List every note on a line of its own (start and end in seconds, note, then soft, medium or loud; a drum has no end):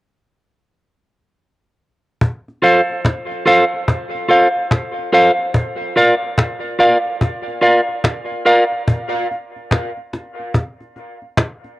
2.21 cajon bass loud
2.48 cajon slap soft
2.62 2.80 F4 medium
2.62 2.80 A4 medium
2.62 2.81 C5 medium
2.62 2.81 F5 medium
2.62 cajon slap soft
2.90 cajon slap soft
3.05 cajon bass medium
3.05 cajon slap medium
3.31 cajon slap soft
3.46 3.63 F4 medium
3.46 3.64 A4 medium
3.46 3.64 C5 medium
3.46 3.64 F5 medium
3.46 cajon slap medium
3.74 cajon slap soft
3.88 cajon bass loud
3.88 cajon slap medium
4.15 cajon slap soft
4.29 4.46 F4 medium
4.29 4.47 A4 medium
4.29 4.47 C5 medium
4.29 4.48 F5 medium
4.29 cajon slap soft
4.56 cajon slap soft
4.71 cajon bass loud
4.71 cajon slap loud
4.98 cajon slap soft
5.13 5.30 F4 medium
5.13 5.30 A4 medium
5.13 5.31 C5 medium
5.13 5.31 F5 loud
5.13 cajon slap soft
5.38 cajon slap soft
5.54 cajon bass loud
5.81 cajon slap soft
5.96 6.13 F4 medium
5.96 6.14 A#4 medium
5.96 6.14 D5 medium
5.96 6.14 F5 medium
5.96 cajon slap soft
6.22 cajon slap soft
6.38 cajon bass loud
6.38 cajon slap loud
6.64 cajon slap soft
6.79 6.96 F4 medium
6.79 6.97 A#4 medium
6.79 6.97 D5 medium
6.79 6.97 F5 medium
6.79 cajon slap medium
7.06 cajon slap soft
7.21 cajon bass medium
7.21 cajon slap medium
7.48 cajon slap soft
7.61 7.79 F4 medium
7.61 7.80 A#4 medium
7.61 7.80 D5 medium
7.61 7.80 F5 medium
7.61 cajon slap soft
7.88 cajon slap soft
8.04 cajon bass loud
8.04 cajon slap loud
8.32 cajon slap soft
8.45 8.63 F4 medium
8.45 8.63 A#4 loud
8.45 8.63 D5 medium
8.45 8.64 F5 medium
8.45 cajon slap soft
8.72 cajon slap soft
8.88 cajon bass loud
9.15 cajon slap soft
9.31 cajon slap soft
9.56 cajon slap soft
9.71 cajon bass medium
9.71 cajon slap medium
9.97 cajon slap soft
10.13 cajon slap medium
10.40 cajon slap soft
10.54 cajon bass medium
10.54 cajon slap medium
10.81 cajon slap soft
10.96 cajon slap soft
11.22 cajon slap soft
11.37 cajon bass loud
11.37 cajon slap loud
11.64 cajon slap soft